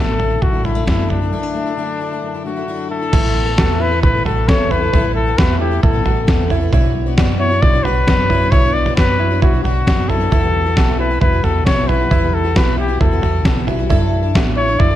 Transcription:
Already playing: A1 F#2 D3 F#3 A3 D4 E4 A4
0.18 F#3 A3 D4 E4, floor tom
0.30 A3 D4 E4
0.42 A1 F#2 F#4, kick, floor tom
0.52 A3 D4 E4
0.63 F#3 G3 A3 D4 E4, floor tom
0.75 A3 D4 E4
0.86 F#2 D3 F#3 A3 D4 E4, kick, snare, floor tom
1.10 D4 E4, floor tom
1.21 A3 D4 E4
1.31 F#2 F#3 A3 B3 D4 E4
1.43 D4
1.54 F#3 A3 D4 E4
1.66 A3 D4 E4
1.77 D3 F#3 A3 D4 E4
2.00 F#3 A3 D4 E4
2.12 A3 D4 E4
2.22 F#2
2.34 A3 D4 E4
2.45 F#3 A3 D4 E4 F#4
2.56 A3 D4 E4
2.67 D3 F#3 A3 D4 E4
2.90 E4 A4
3.01 A3 D4 E4
3.13 A1 A2 E3 A3 B3 E4 A4, kick, floor tom, crash
3.46 A3 B3 A4
3.58 E2 A2 E3 A3 B3 F#4 A4, kick, snare
3.80 E4 B4
3.91 A3 B3 A4
4.03 A1 E4 B4, kick, floor tom
4.14 A3 B3 A4
4.25 A1 E3 A3 B3 F#4 A4, floor tom
4.48 E2 A2 E3 A3 B3 A4 C#5, kick, snare
4.70 E3 A3 B3 E4 A4 B4, floor tom
4.81 A3 B3 A4
4.93 A1 A2 E3 A3 B3 E4 A4, kick, floor tom
5.03 A3 B3 A4
5.15 A4
5.26 A3 B3 A4
5.38 E2 A2 E3 A3 B3 F#4 A4 B4, kick, snare
5.59 E4 G4
5.71 A3 B3 A4
5.83 A1 E4 A4, kick, floor tom
5.93 A3 B3 A4
6.04 A1 E3 A3 B3 F#4 A4, floor tom
6.27 E2 A2 E3 A3 B3 A4, kick, snare
6.50 E3 A3 B3 E4 A4, floor tom
6.61 A3 B3 A4
6.73 B1 B2 F#3 B3 D4 E4 F#4 C#5, kick, floor tom
6.83 B3 D4 F#4 C#5
7.06 B3 D4 F#4 C#5
7.17 F#2 B2 F#3 B3 D4 F#4 C#5, kick, snare
7.40 E4 C#5
7.51 B3 D4 F#4 C#5
7.61 B1 E4 D5, kick, floor tom
7.73 B3 D4 F#4 C#5
7.84 B1 B3 D4 F#4 B4 C#5, floor tom
8.07 F#2 B2 F#3 B3 D4 F#4 C#5, kick, snare
8.29 B3 D4 E4 F#4 C#5, floor tom
8.41 B3 D4 F#4 C#5
8.51 B1 B2 F#3 B3 D4 E4 F#4 C#5, kick, floor tom
8.63 B3 D4 F#4 C#5
8.73 D5
8.86 B3 D4 F#4 C#5, floor tom
8.97 F#2 B2 F#3 B3 D4 F#4 B4 C#5, kick, snare
9.20 E4
9.31 B3 D4 F#4 C#5
9.42 B1 E4 F#4, kick, floor tom
9.53 B3 D4 F#4 C#5
9.64 B1 B3 D4 F#4 C#5, floor tom
9.87 F#2 B2 F#3 B3 D4 F#4 C#5, kick, snare
10.09 B3 D4 E4 F#4 A4 C#5, floor tom
10.20 B3 D4 F#4 C#5
10.31 E2 E3 G3 B3 E4 F#4, kick, floor tom
10.42 G3 B3 E4 F#4
10.65 G3 B3 E4 F#4
10.76 B1 E2 E3 G3 B3 E4 F#4, kick, snare
10.99 E4 B4
11.10 G3 B3 E4 F#4
11.21 E2 E4 B4, kick, floor tom
11.32 G3 B3 E4 F#4
11.43 E2 G3 B3 E4 F#4 A4, floor tom
11.66 B1 E2 E3 G3 B3 E4 F#4 C#5, kick, snare
11.88 G3 B3 E4 F#4 B4, floor tom
11.99 G3 B3 E4 F#4
12.11 E2 E3 G3 B3 E4 F#4, kick, floor tom
12.22 G3 B3 E4 F#4
12.34 A4
12.44 G3 B3 E4 F#4
12.55 B1 E2 E3 G3 B3 E4 F#4 B4, kick, snare
12.78 E4 G4
12.88 G3 B3 E4 F#4
13.00 E2 E4 A4, kick, floor tom
13.11 G3 B3 E4 F#4
13.22 E2 G3 B3 E4 F#4, floor tom
13.45 B1 E2 E3 G3 B3 E4 F#4, kick, snare
13.67 G3 B3 E4 F#4, floor tom
13.79 G3 B3 E4 F#4
13.89 F#2 F#3 D4 E4 A4, kick, floor tom
14.23 D4 E4 A4
14.34 A1 F#3 D4 E4 F#4 A4, kick, snare
14.57 E4 C#5
14.68 D4 E4 A4
14.79 F#2 E4 D5, kick, floor tom
14.91 E4 A4

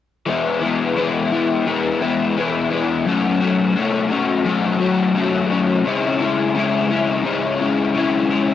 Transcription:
0.26 E3 G#3 B3 E4
0.61 G#3 B3 E4
0.96 E3 G#3 B3 E4
1.32 G#3 B3 E4
1.66 E3 G#3 B3 E4
2.01 G#3 B3 E4
2.36 E3 G#3 B3 E4
2.70 G#3 B3 E4
3.06 F#3 A3 C#4 F#4
3.40 A3 C#4 F#4
3.76 F#3 A3 C#4 F#4
4.10 A3 C#4 F#4
4.45 F#3 A3 C#4 F#4
4.80 A3 C#4 F#4
5.15 F#3 A3 C#4 F#4
5.50 A3 C#4 F#4
5.85 C#3 G#3 C#4 E4
6.20 G#3 C#4 E4
6.55 C#3 G#3 C#4 E4
6.90 G#3 C#4 E4
7.24 C#3 G#3 C#4 E4
7.59 G#3 C#4 E4
7.94 C#3 G#3 C#4 E4
8.30 G#3 C#4 E4

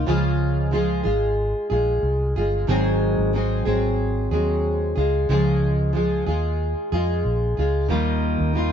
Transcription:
0.07 C#2 C#3 F3 G#3 F4 G#4
0.71 F3 G#3 F4 G#4
1.03 G#1 G#3 F4 G#4
1.70 A#1 G#3 F4 G#4
2.03 C2
2.36 G1 G#3 F4 G#4
2.67 G#1 G#2 D#3 F#3 G#3 C4 G#4
3.19 G#1
3.33 F#3 G#3 C4 G#4
3.65 G#1 F#3 G#3 C4 G#4
4.31 D#2 F#3 G#3 C4 G#4
4.96 C#2 G#3 F4 G#4
5.29 C#2 C#3 F3 G#3 F4 G#4
5.93 F3 G#3 F4 G#4
6.26 D#2 G#3 F4 G#4
6.92 F2 G#3 F4 G#4
7.25 A#1
7.57 C#2 G#3 F4 G#4
7.89 D#2 D#3 G3 A#3 D#4 F4 A#4 G5 D#6
8.40 D#2
8.53 G3 A#3 D#4 F4

